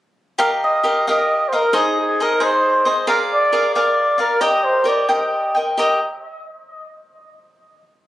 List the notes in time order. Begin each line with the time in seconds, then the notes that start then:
0.38 G4 A#4 D#5 F5
0.64 D#5
0.83 G4 A#4 D#5 F5
1.07 G4 A#4 D#5 F5
1.48 C5
1.52 A#4 D#5 F5
1.73 D#4 G#4 C5 D#5
2.01 G#4
2.20 D#4 G#4 A#4 C5 D#5
2.40 D#4 G#4 C5 D#5
2.85 G#4 C5 D#5
3.07 G#4 A#4 D5 F5
3.34 D5
3.52 G#4 A#4 D5 F5
3.75 G#4 A#4 D5 F5
4.18 A#4 D5 F5
4.41 G4 A#4 D#5 G5
4.64 C5
4.84 G4 A#4 D5 D#5 G5
5.09 G4 A#4 D#5 G5
5.55 A#4 D#5 G5
5.78 G4 A#4 D#5 G5